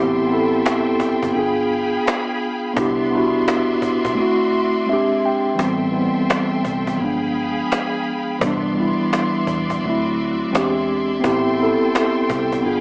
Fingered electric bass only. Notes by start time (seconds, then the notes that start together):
Already playing: A1
1.23 F#1
1.36 G1
2.77 C2
4.05 B1
5.60 A1
6.65 C2
7.00 G1
8.42 C2
9.47 E2
9.83 D2
10.53 E2
11.24 A1
12.30 C2
12.65 G1